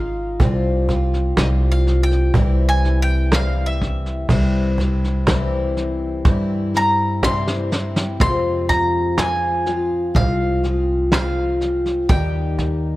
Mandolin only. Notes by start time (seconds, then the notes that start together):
Already playing: F5
1.39 D#5
1.72 F5
2.03 G5
2.69 G#5
3.02 G5
3.35 F5
3.66 E5
6.77 A#5
7.24 C6
8.21 C6
8.69 A#5
9.19 G#5
10.16 F5
11.14 F5
12.09 G5